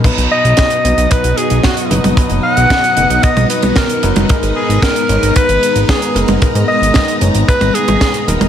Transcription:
<<
  \new Staff \with { instrumentName = "Alto saxophone" } { \time 4/4 \key b \major \tempo 4 = 113 r8 dis''4. b'8 gis'8 fis'8. r16 | r8 fis''4. dis''8 b'8 ais'8. r16 | r8 gis'8 ais'4 b'4 gis'8. r16 | r8 dis''4 r8 b'8 gis'4 r8 | }
  \new Staff \with { instrumentName = "String machine" } { \time 4/4 \key b \major << { <fis dis''>1~ | <fis dis''>1 | <gis ais''>1~ | <gis ais''>1 | } \\ { <b dis'>1~ | <b dis'>1~ | <b dis'>1~ | <b dis'>1 | } >> }
  \new Staff \with { instrumentName = "Grand piano" } { \time 4/4 \key b \major <b, fis b dis' b'>4. <b, fis b dis' dis''>2 <b, fis b dis' b'>8 | <b, fis b dis' b'>4. <b, fis b dis' dis''>2 <fis b dis' b'>8 | <gis, gis b dis' ais'>4. <gis, gis b dis' cis''>2 <gis, gis b dis' ais'>8 | <gis, gis b dis' ais'>4. <gis, gis b dis' cis''>2 <gis b dis' ais'>8 | }
  \new Staff \with { instrumentName = "Analog synth bass" } { \clef bass \time 4/4 \key b \major r16 b,,16 r16 b,,16 r8 b,,16 b,,16 r16 b,,16 r16 b,,16 r8 fis,,16 fis,,16 | r16 fis,,16 r16 b,,16 r8 fis,,16 b,,16 r16 b,,16 r16 b,,16 r8 fis,,16 fis,,16 | r16 gis,,16 r16 gis,,16 r8 gis,,16 gis,,16 r16 gis,,16 r16 gis,,16 r8 fis,,16 fis,,16 | r16 gis,16 r16 gis,,16 r8 fis,,16 gis,,16 r16 gis,,16 r16 gis,,16 r8 dis,,16 dis,,16 | }
  \new DrumStaff \with { instrumentName = "Drums" } \drummode { \time 4/4 <cymc hh bd>16 hh8 hh16 <hh bd sn>16 hh16 hh16 hh16 <hh bd>16 hh16 hh16 hh16 <hh bd sn>16 hh16 hh16 <hh tommh>16 | <hh bd>16 hh8 hh16 <hh bd sn>16 hh16 hh16 hh16 <hh bd>16 <hh tommh>16 hh16 <hh tommh>16 <hh bd sn>16 hh16 hh16 <hh tommh>16 | <hh bd>16 hh8 hh16 <hh bd sn>16 hh16 hh16 hh16 <hh bd>16 hh16 hh16 hh16 <hh bd sn>16 hh16 hh16 <hh tommh>16 | <hh bd>16 hh8 hh16 <hh bd sn>16 hh16 hh16 hh16 <hh bd>16 <hh tommh>16 hh16 <hh tommh>16 <hh bd sn>16 hh16 hh16 <hh tommh>16 | }
>>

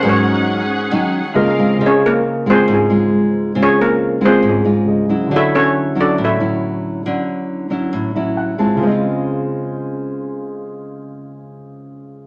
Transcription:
<<
  \new Staff \with { instrumentName = "String section" } { \time 4/4 \key des \major \tempo 4 = 137 << { <aes' ges''>2. <bes' f''>4 | r1 | r1 | r1 |
r1 | r1 | r1 | } \\ { des'1 | r1 | r1 | r1 |
r1 | r1 | r1 | } >> }
  \new Staff \with { instrumentName = "Grand piano" } { \time 4/4 \key des \major << { r2. ees''4 | r1 | r1 | r1 |
r2 r8 e''8 fis''8 a''8 | r1 | r1 | } \\ { <aes ees' ges' bes' des''>2. <des f' aes' bes'>4 | <des f' aes' c'' ees''>1~ | <des f' aes' c'' ees''>2. <des aes' c'' ees''>4 | <d fis' a' cis'' e''>1~ |
<d fis' a' cis'' e''>1 | <des f' aes' c'' ees''>1~ | <des f' aes' c'' ees''>1 | } >> }
  \new Staff \with { instrumentName = "Steel pan" } { \time 4/4 \key des \major des''4 r2. | <des' f' aes' des''>8 <bes bes'>4 <c' f' aes' c''>8 <aes des' f' aes'>4. r8 | <des' f' aes' des''>8 <bes bes'>4 <c' f' aes' c''>8 <aes des' f' aes'>4. r8 | <e' a' cis'' e''>8 <cis' fis' a' cis''>4 <d' fis' a' d''>8 <e' a' cis'' e''>4. r8 |
r1 | r1 | r1 | }
  \new Staff \with { instrumentName = "Nylon-string guitar" } { \time 4/4 \key des \major << { <ges des' ees'>4. r8 <ges des' ees'>8 r8 <aes bes f'>8 <aes c' f'>8~ | <aes c' f'>4 r8 <aes c' f'>4 <aes f'>4. | <aes c' f'>4. <aes c' f'>4 <aes f'>4 <ges des' fes'>8~ | <ges des' fes'>4. <fis cis' e'>4 <fis cis' e'>4. |
<fis cis' e'>4. <fis cis' e'>4 <fis cis' e'>4 <aes c' f'>8~ | <aes c' f'>4 r2. | r1 | } \\ { aes,2 ees4 r4 | des2 aes,2 | des2 aes,2 | d2 a,2 |
d2 a,2 | <des aes c' f'>1~ | <des aes c' f'>1 | } >> }
>>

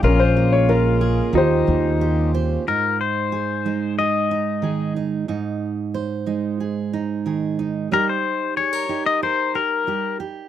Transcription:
<<
  \new Staff \with { instrumentName = "Pedal steel guitar" } { \time 4/4 \key aes \major \tempo 4 = 92 f'2 ees'4. r8 | bes'8 c''4. ees''4. r8 | r1 | bes'16 c''8. des''8. ees''16 c''8 bes'4 r8 | }
  \new Staff \with { instrumentName = "Upright piano" } { \time 4/4 \key aes \major << { bes'16 c''8 des''16 bes'4 c''4. r8 | r1 | r1 | r1 | } \\ { des'2 g'2 | r1 | r1 | r1 | } >> }
  \new Staff \with { instrumentName = "Felt piano" } { \time 4/4 \key aes \major r2 f'2~ | f'8 r2. r8 | r1 | r1 | }
  \new Staff \with { instrumentName = "Steel-string acoustic guitar" } { \time 4/4 \key aes \major << { r4 f'8 aes'8 r4 g'8 c''8 | ees'4 aes'8 ees'8 aes'8 ees'8 aes'8 ees'8 | ees'4 c''8 ees'8 aes'8 ees'8 aes'8 ees'8 | <ees' g'>4 aes'16 bes'16 g'8 bes'8 g'8 g'8 g'8 | } \\ { bes,8 bes4. ees8 bes4. | aes,4. aes4. ees4 | aes,4. aes4. ees4 | g4. ees'4. g4 | } >> }
  \new Staff \with { instrumentName = "Harmonium" } { \time 4/4 \key aes \major f'1 | r1 | r1 | r1 | }
  \new Staff \with { instrumentName = "Harmonium" } { \clef bass \time 4/4 \key aes \major <des aes bes>2 <des g c'>2 | r1 | r1 | r1 | }
  \new Staff \with { instrumentName = "Upright bass" } { \clef bass \time 4/4 \key aes \major bes,,2 ees,8 ees,4. | r1 | r1 | r1 | }
>>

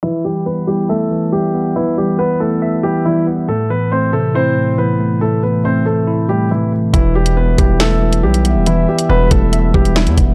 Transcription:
<<
  \new Staff \with { instrumentName = "French horn section" } { \time 4/4 \key e \minor \tempo 4 = 139 r1 | r1 | r1 | r1 |
<b g' e''>1~ | <b g' e''>1 | }
  \new Staff \with { instrumentName = "Grand piano" } { \time 4/4 \key e \minor <e e'>8 <g g'>8 <b b'>8 <g g'>8 <a a'>4 <g g'>4 | <e e'>8 <g g'>8 <b b'>8 <a a'>4 <g g'>8 <e e'>8 r8 | <a a'>8 <b b'>8 <c' c''>8 <a a'>8 <c' c''>4 <b b'>4 | <a a'>8 <b b'>8 <c' c''>8 <a a'>4 <g g'>8 <e e'>8 r8 |
<e e'>8 <g g'>8 <b b'>8 <g g'>8 <a a'>4 <g g'>4 | <e e'>8 <g g'>8 <b b'>8 <a a'>4 <g g'>8 <e e'>8 r8 | }
  \new Staff \with { instrumentName = "Tine electric piano" } { \clef bass \time 4/4 \key e \minor e8 g8 b8 e'8 e''8 e8 g8 b8 | e8 g8 b8 e'8 e''8 e8 g8 b8 | a,8 e8 a8 c8 e'8 a,8 e8 a8 | a,8 e8 a8 c'8 e'8 a,8 e8 a8 |
e8 g8 b8 e'8 e''8 e8 g8 b8 | e8 g8 b8 e'8 e''8 e8 g8 b8 | }
  \new Staff \with { instrumentName = "808-style bass" } { \clef bass \time 4/4 \key e \minor r1 | r1 | r1 | r1 |
e,,4. e,,4. b,,8. e,,16~ | e,,8 r8 e,,8 e,,4 e,,8. e,16 e,,8 | }
  \new DrumStaff \with { instrumentName = "Drums" } \drummode { \time 4/4 r4 r4 r4 r4 | r4 r4 r4 r4 | r4 r4 r4 r4 | r4 r4 r4 r4 |
<hh bd>8. hh16 r8 <hh bd>8 <hh sn>8. hh16 r16 hh16 hh8 | hh8. hh16 r8 <hh bd>8 hh8 bd16 hh16 sn16 hh16 <hh bd>8 | }
>>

